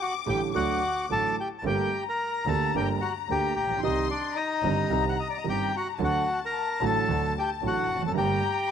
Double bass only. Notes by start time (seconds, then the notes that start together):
0.27 A1
0.54 D2
1.09 A1
1.63 G1
2.45 D2
2.72 G1
3.28 D2
3.55 A#1
3.82 C2
4.62 G1
4.89 C2
5.45 G1
5.98 D2
6.80 A1
7.08 D2
7.61 A1
7.88 F1
8.15 G1